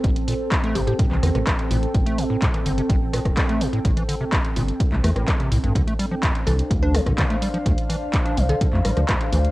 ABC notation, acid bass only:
X:1
M:4/4
L:1/16
Q:1/4=126
K:Am
V:1 name="Acid bass" clef=bass
A,,, z _B,, z2 A, B,, A,, A,, E, D, C, A,,, z B,, z | z A, _B,, A,, A,, E, D, C, A,,, z B,, z2 A, B,, A,, | A,, E, D, C, A,,, z _B,, z2 A, A, A,, A, C, A,, G,, | D, A, G, F, D,, z E, z2 D E, D, D, A, G, F, |
D,, z E, z2 D E, D, D, A, G, F, D,, z E, z |]